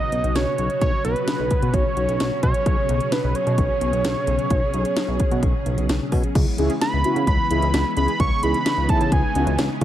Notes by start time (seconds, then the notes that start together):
Already playing: B2 C#3 F#3 C#4 F#4 D#5
0.12 B1, closed hi-hat
0.24 B1, closed hi-hat
0.35 B1 C#5, snare, closed hi-hat
0.58 B1, closed hi-hat
0.70 closed hi-hat
0.81 B1 C#5, kick, closed hi-hat
1.05 B1 B4, closed hi-hat
1.16 closed hi-hat
1.28 snare, closed hi-hat
1.39 B1
1.51 kick, closed hi-hat
1.62 B2, closed hi-hat
1.73 B1 C#5, kick, closed hi-hat
1.97 B1, closed hi-hat
2.08 B1, closed hi-hat
2.20 B1, snare, closed hi-hat
2.43 B2 C#5, kick, closed hi-hat
2.54 closed hi-hat
2.66 B1 G#4, kick, closed hi-hat
2.89 B1, closed hi-hat
3.00 closed hi-hat
3.12 B4, snare, closed hi-hat
3.24 B1
3.35 C#5, closed hi-hat
3.47 B2, closed hi-hat
3.58 B1, kick, closed hi-hat
3.81 B1, closed hi-hat
3.93 B1, closed hi-hat
4.04 B1, snare, closed hi-hat
4.27 B1, closed hi-hat
4.39 closed hi-hat
4.50 B1, kick, closed hi-hat
4.74 B1, closed hi-hat
4.85 closed hi-hat
4.97 snare, closed hi-hat
5.08 B1
5.20 kick, closed hi-hat
5.31 B2, closed hi-hat
5.43 B1, kick, closed hi-hat
5.66 B1, closed hi-hat
5.78 B1, closed hi-hat
5.89 B1, snare, closed hi-hat
6.12 B2, kick, open hi-hat
6.23 closed hi-hat
6.35 C#2 C#3 E3 G#3 B3 E4, kick, closed hi-hat, crash
6.58 C#2 C#4 E4 G#4, closed hi-hat
6.70 closed hi-hat
6.81 B5, snare, closed hi-hat
6.93 C#2
7.04 C#4 E4 F#4, closed hi-hat
7.16 C#3, closed hi-hat
7.27 C#2 B5, kick, closed hi-hat
7.51 C#2 C#4 E4 G#4, closed hi-hat
7.62 C#2, closed hi-hat
7.74 C#2, snare, closed hi-hat
7.97 C#2 C#4 E4 G#4 B5, closed hi-hat
8.08 closed hi-hat
8.20 C#2 D#4 C#6, kick, closed hi-hat
8.43 C#2 C#4 E4 G#4 B5, closed hi-hat
8.54 closed hi-hat
8.66 snare, closed hi-hat
8.78 C#2
8.89 C#4 E4 G#4 A5, kick, closed hi-hat
9.01 C#3, closed hi-hat
9.12 C#2 G#5, kick, closed hi-hat
9.35 C#2 C#4 E4 F#4, closed hi-hat
9.47 C#2, closed hi-hat
9.58 C#2, snare, closed hi-hat
9.81 closed hi-hat